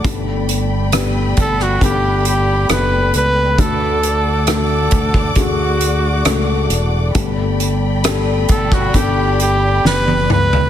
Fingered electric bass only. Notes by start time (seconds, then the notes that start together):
1.38 G1
1.81 G1
2.70 F#1
3.14 C#2
3.59 D2
4.92 D2
5.36 D2
6.26 C#2
6.70 E1
8.50 G1
8.94 G1
9.84 F#1
10.30 C#2